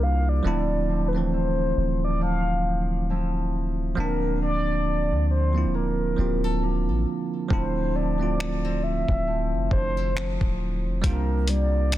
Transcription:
Already playing: C2 C3 G3 A#3 D4 E4 F4
0.03 F5
0.29 D5
0.43 D1 D3 F3 A3 C4 E4
0.47 E4
0.89 F3 C4
1.08 B4
1.13 F3 A3 C4 C5
1.17 E3
1.33 C4
1.77 D1
2.04 D5
2.21 F3 F5
3.10 F3 C4 E4
3.95 D1 D3 F3 A#3 C4 A#4
4.00 D4
4.42 A#3 F4 D5
4.86 F4
5.11 D2
5.31 C5
5.53 F3 A#3 C4
5.58 E4
5.65 D1
5.74 A#3 A#4
6.16 D1 F3 A#3 C4 G4
6.20 F4
6.44 A4
6.63 A#3 F4
6.88 A1
7.49 D1 D3 F3 A3 C4 E4 C5, kick
7.53 E4
7.95 F3 C4 E4 D5
8.18 F3 A3 C4
8.23 F4
8.39 A#3, finger snap
8.64 C4
8.83 E5
9.08 D1, kick
9.27 F3
9.53 F1
9.71 F1 D4 C5, kick
9.97 E4
10.15 F3 C4 E4, finger snap
10.41 D1, kick
10.85 E1
11.02 C2 C3 G3 A#3 D4 F4 A#4, kick, closed hi-hat
11.06 F4
11.48 G3 A#3 F4 D5, closed hi-hat
11.92 A#3, finger snap, closed hi-hat

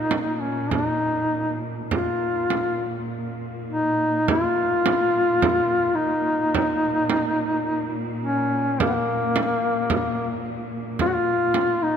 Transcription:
Already playing: A#2 D#4
0.11 frame drum
0.34 D#4
0.40 C#4
0.70 D#4, frame drum
1.89 A#2 F4, frame drum
2.50 frame drum
3.69 D#4
4.28 F4, frame drum
4.86 frame drum
5.42 frame drum
5.95 D#4
6.55 frame drum
7.10 frame drum
8.21 C#4
8.80 A#3, frame drum
8.89 A#3 B3
9.36 frame drum
9.90 frame drum
10.99 F4, frame drum
11.08 F#4
11.14 F4
11.54 frame drum
11.82 D#4

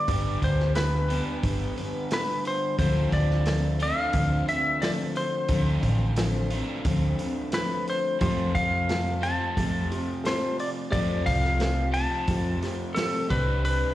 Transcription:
Already playing: D4 D5
0.07 G1 G2 D3 G3 B3 D4, kick, open hi-hat
0.12 G4
0.42 D2 C5, kick, open hi-hat
0.60 snare
0.74 G3 B3 D4 B4, snare, open hi-hat
1.08 D3 G3 B3 D4 G4 B4, open hi-hat
1.12 G2
1.42 G1 G3 B3 D4 B4, kick, open hi-hat
1.76 G3 B3 D4 B4, open hi-hat
2.09 G3 D4, snare, open hi-hat
2.13 B4
2.45 C5, open hi-hat
2.78 D2 D3 F3 A3 C4 D4 A4 C5, kick, open hi-hat
2.82 F4
3.12 D2 D5, kick, open hi-hat
3.31 snare
3.45 F3 C4 D4 A4, snare, open hi-hat
3.78 A3 C4 D4 F4 A4, open hi-hat
3.83 D3 F5
4.13 D2 F3 C4 D4 A4, kick, open hi-hat
4.46 C4 D4 A4 E5, open hi-hat
4.80 F3 C4 D4 A4 D5, snare, open hi-hat
5.16 C5, open hi-hat
5.48 D2 D3 F3 A3 C4 D4 F4 A4, kick, open hi-hat
5.83 A1, kick, open hi-hat
6.16 F3 C4 D4 A4, snare, open hi-hat
6.50 D3 A3 C4 D4 F4 A4, open hi-hat
6.85 D2 F3 C4 D4, kick, open hi-hat
6.89 A4
7.19 C4 D4 A4, open hi-hat
7.52 F3 C4 B4, snare, open hi-hat
7.57 D4 A4
7.87 C5, open hi-hat
8.19 F2 C3 F3 A3 C4 F4 G4 C5, kick, open hi-hat
8.55 F2 F5, kick, open hi-hat
8.88 A3 C4 F4 G4 A4, snare, open hi-hat
9.21 F2 C3 F3 A3 C4 F4 G4 A5, open hi-hat
9.26 C4
9.56 F2 A3 C4 F4 G4, kick, open hi-hat
9.91 A3 C4 F4 G4, open hi-hat
10.24 A3 C4 F4 G4 A4 C5, snare, open hi-hat
10.59 D5, open hi-hat
10.90 F2 C3 F3 A3 C4 F4 G4 D5, kick, open hi-hat
10.94 C4 F4
11.26 C2 F5, kick, open hi-hat
11.44 snare
11.57 A3 C4 F4 G4, snare, open hi-hat
11.92 F2 C3 F3 A3 C4 F4 G4 A5, open hi-hat
11.97 C4
12.28 F2 A3 C4 F4 G4, kick, open hi-hat
12.32 G4
12.62 A3 C4 F4 G4, snare, open hi-hat
12.95 A3 C4 F4 G4 A4, snare, open hi-hat
12.99 F4 G4
13.28 C2 C3 G3 C4 D4 G4 B4, kick, open hi-hat
13.32 C3 G3 G4
13.65 B4, open hi-hat

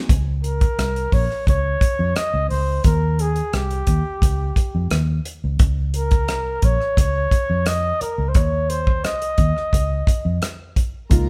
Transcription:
Already playing: A#3 C4 D#4 F#4 G#4
0.09 C#2, kick, closed hi-hat
0.44 A#4, closed hi-hat
0.61 kick, closed hi-hat
0.79 C2, cross-stick, closed hi-hat
0.96 closed hi-hat
1.12 A#1 C#5, kick, open hi-hat
1.31 cross-stick
1.47 C#2 C#5, kick, closed hi-hat
1.81 kick, closed hi-hat
1.99 F2
2.16 D#5, cross-stick, closed hi-hat
2.34 C#2
2.49 C#2 C5, open hi-hat
2.84 D#2 A#4, kick, closed hi-hat
3.19 G#4, closed hi-hat
3.36 closed hi-hat
3.53 C2 G4, cross-stick, closed hi-hat
3.71 closed hi-hat
3.87 D#2, kick, closed hi-hat
4.22 C#2, kick, closed hi-hat
4.56 kick, closed hi-hat
4.75 F2
4.91 D#2, cross-stick, closed hi-hat
5.25 closed hi-hat
5.44 C#2
5.59 C#2, kick, closed hi-hat
5.94 A#4, closed hi-hat
6.11 kick, closed hi-hat
6.28 C2, cross-stick, closed hi-hat
6.62 A#1 C#5, kick, closed hi-hat
6.81 cross-stick
6.97 C#2 C#5, kick, closed hi-hat
7.31 kick, closed hi-hat
7.50 F2
7.66 D#5, cross-stick, closed hi-hat
8.01 A#4, muted fingered electric bass stroke, closed hi-hat
8.18 C#2
8.29 C5
8.34 D#2 C#5, kick, closed hi-hat
8.70 C5, closed hi-hat
8.87 kick
9.04 C2 D#5, cross-stick, closed hi-hat
9.22 closed hi-hat
9.38 D#2, kick, closed hi-hat
9.57 cross-stick
9.73 C#2, kick, closed hi-hat
10.07 kick, closed hi-hat
10.25 F2
10.42 cross-stick, closed hi-hat
10.76 kick, closed hi-hat
11.10 C#2 G#3 A#3 D#4 F4 A#4 A#5, kick, closed hi-hat

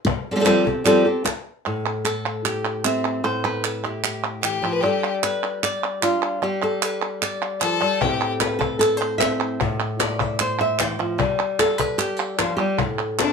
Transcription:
0.05 muted nylon-string guitar stroke, cajon bass
0.27 cajon slap
0.31 G3 C4 G4 A4
0.36 G3 C4 G4 A4
0.40 G3 C4 G4 A4
0.45 F3 G3 C4 G4 A4, cajon slap, clap
0.65 C4 G4 A4, cajon bass
0.84 F3 G3 C4 G4 A4, clap
1.05 C4 G4 A4, cajon slap
1.24 muted nylon-string guitar stroke, cajon slap, clap
1.66 A2
2.05 A4, clap
2.45 G4, clap
2.84 C4 E5, clap
3.05 clap
3.24 A2 C5
3.44 B4
3.64 A4, clap
3.85 E4 G4
4.04 G4, clap
4.42 E3 G4, clap
4.62 F3
4.72 B4
4.81 G3 D4 G4
4.86 A4
5.23 B4, clap
5.43 clap
5.63 D5, clap
6.02 D4 F4, clap
6.42 G3 G4
6.63 A4
6.82 B4, clap
7.02 clap
7.22 D5, clap
7.61 F3 A4, clap
7.82 G3
8.01 A2 C4 E4 G4 A4, cajon bass
8.40 B4, cajon slap, clap
8.59 A4, cajon bass
8.79 A4, clap
8.97 C5
9.01 clap
9.18 C4 E5, cajon slap, clap
9.61 A2, cajon bass
10.00 D5, cajon slap, clap
10.20 E5, cajon bass
10.39 C5, clap
10.61 E5
10.79 E3 G5, cajon slap, clap
10.99 F3
11.18 G3, cajon bass
11.59 A4, cajon slap, clap
11.78 B4, cajon bass
11.98 G4, clap
12.17 A4, clap
12.39 F3 F4, cajon slap, clap
12.57 G3 G4, clap
12.77 A2 A4, cajon bass
12.99 cajon slap
13.19 C4 D4, cajon slap, clap

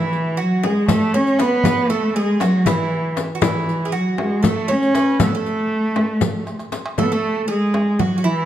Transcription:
Already playing: E3 E4
0.13 riq
0.25 darbuka ka
0.37 F#3 F#4
0.63 G#3 G#4, frame drum
0.88 A3 A4, riq, darbuka dum, frame drum
1.14 C#4 C#5, darbuka ka
1.27 riq, darbuka ka
1.39 B3 B4, riq, darbuka tek, frame drum
1.64 B4, riq, darbuka dum, frame drum
1.90 A3 A4, riq
2.03 darbuka ka
2.14 G#3 G#4
2.40 F#3 F#4, riq, darbuka tek, frame drum
2.66 E3 E4, riq, darbuka dum, frame drum
2.91 darbuka ka
3.04 darbuka ka
3.17 riq, darbuka tek, frame drum
3.35 F#4
3.42 E3 E4, riq, darbuka dum, frame drum
3.69 riq
3.81 darbuka ka
3.85 G#4
3.92 F#3 F#4
4.18 G#3, darbuka tek, frame drum
4.43 A3 A4, riq, darbuka dum, frame drum
4.68 C#4 C#5, darbuka ka
4.82 riq, darbuka ka
4.95 B4, riq, darbuka tek, frame drum
5.20 A3 A4, riq, frame drum, darbuka dum
5.27 B3
5.35 A3 A4
5.46 riq
5.96 darbuka tek, frame drum
6.21 riq, frame drum, darbuka dum
6.47 riq, darbuka tek
6.59 riq, darbuka ka
6.72 riq, darbuka tek, frame drum
6.86 darbuka ka
6.98 A3 A4, frame drum, darbuka dum
7.03 B3
7.12 A3 A4
7.24 darbuka ka
7.36 darbuka ka
7.48 G#3 G#4
7.74 darbuka tek, frame drum
7.99 F#3 F#4, frame drum, darbuka dum
8.18 F#4
8.24 E3 E4, darbuka ka

